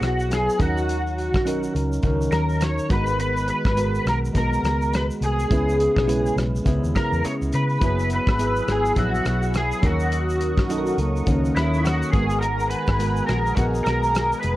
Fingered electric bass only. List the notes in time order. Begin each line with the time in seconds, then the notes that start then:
0.01 B1
0.60 D#2
1.34 B1
1.75 C#2
2.04 C#2
2.31 D#2
2.90 G#1
3.65 G#1
4.05 B1
4.35 B1
4.63 C#2
5.21 C2
5.50 C#2
5.96 B1
6.36 B1
6.65 C#2
6.84 D#2
7.12 E2
7.24 muted fingered electric bass stroke
7.42 C#2
7.54 C#3
7.81 F#1
8.27 G#1
8.67 G#1
8.96 A#1
9.25 B1
9.83 D#2
10.57 B1
10.98 C#2
11.27 C#2
11.55 D#2
12.13 G#1
12.87 G#1
13.29 A#1
13.57 A#1
13.86 B1
14.44 F1